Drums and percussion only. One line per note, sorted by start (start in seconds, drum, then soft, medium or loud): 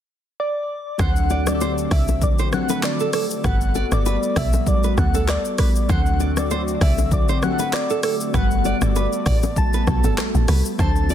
0.99 kick loud
0.99 cross-stick loud
0.99 low conga medium
0.99 shaker medium
1.16 shaker soft
1.30 high bongo medium
1.30 low bongo medium
1.30 shaker medium
1.47 cross-stick medium
1.47 low bongo medium
1.47 shaker medium
1.61 high bongo medium
1.61 shaker medium
1.78 shaker soft
1.91 kick medium
1.91 cross-stick medium
1.91 open hi-hat medium
1.91 shaker medium
2.08 high bongo medium
2.08 low bongo medium
2.08 shaker medium
2.22 kick loud
2.22 low conga medium
2.22 shaker medium
2.38 shaker medium
2.52 cross-stick medium
2.52 low conga medium
2.52 shaker soft
2.69 low bongo medium
2.69 shaker medium
2.83 cross-stick medium
2.83 clap medium
2.83 high bongo medium
2.83 shaker medium
3.00 shaker soft
3.13 cross-stick medium
3.13 open hi-hat medium
3.13 shaker medium
3.31 shaker medium
3.44 kick loud
3.44 cross-stick loud
3.44 low conga medium
3.44 shaker medium
3.61 shaker soft
3.75 high bongo medium
3.75 low bongo medium
3.75 shaker medium
3.92 cross-stick medium
3.92 low bongo medium
3.92 shaker medium
4.06 high bongo medium
4.06 shaker medium
4.23 shaker soft
4.36 kick loud
4.36 cross-stick medium
4.36 open hi-hat medium
4.36 shaker medium
4.53 high bongo medium
4.53 low bongo medium
4.53 shaker medium
4.67 kick loud
4.67 low conga medium
4.67 shaker medium
4.83 shaker medium
4.98 kick medium
4.98 cross-stick medium
4.98 low conga medium
4.98 shaker soft
5.14 low bongo medium
5.14 shaker medium
5.28 cross-stick loud
5.28 clap medium
5.28 high bongo medium
5.28 shaker medium
5.45 shaker soft
5.58 kick loud
5.58 cross-stick medium
5.58 open hi-hat medium
5.58 shaker medium
5.76 shaker medium
5.89 kick loud
5.89 cross-stick loud
5.89 low conga medium
5.89 shaker medium
6.06 shaker soft
6.20 high bongo medium
6.20 low bongo medium
6.20 shaker medium
6.37 cross-stick medium
6.37 low bongo medium
6.37 shaker loud
6.51 high bongo medium
6.51 shaker medium
6.68 shaker soft
6.81 kick loud
6.81 cross-stick medium
6.81 open hi-hat medium
6.81 shaker medium
6.98 high bongo medium
6.98 low bongo medium
6.98 shaker medium
7.12 kick loud
7.12 low conga medium
7.12 shaker medium
7.28 shaker medium
7.42 cross-stick medium
7.42 low conga medium
7.42 shaker soft
7.59 low bongo medium
7.59 shaker medium
7.73 cross-stick medium
7.73 clap medium
7.73 high bongo medium
7.73 shaker medium
7.90 shaker soft
8.03 cross-stick medium
8.03 open hi-hat medium
8.03 shaker medium
8.21 shaker medium
8.34 kick loud
8.34 cross-stick loud
8.34 low conga medium
8.34 shaker medium
8.51 shaker soft
8.65 high bongo medium
8.65 low bongo medium
8.65 shaker medium
8.82 cross-stick medium
8.82 low bongo medium
8.82 shaker loud
8.96 high bongo medium
8.96 shaker medium
9.13 shaker soft
9.26 kick loud
9.26 cross-stick medium
9.26 open hi-hat medium
9.26 shaker medium
9.43 high bongo medium
9.43 low bongo medium
9.43 shaker medium
9.56 kick medium
9.56 low conga medium
9.56 shaker medium
9.73 shaker medium
9.87 kick loud
9.87 cross-stick medium
9.87 low conga medium
9.87 shaker soft
10.04 low bongo medium
10.04 shaker loud
10.18 cross-stick loud
10.18 clap medium
10.18 high bongo medium
10.18 shaker medium
10.35 shaker soft
10.48 cross-stick medium
10.48 open hi-hat medium
10.48 shaker medium
10.66 shaker medium
10.79 kick loud
10.79 cross-stick loud
10.79 low conga medium
10.79 shaker medium
10.96 shaker soft
11.10 high bongo medium
11.10 low bongo medium
11.10 shaker medium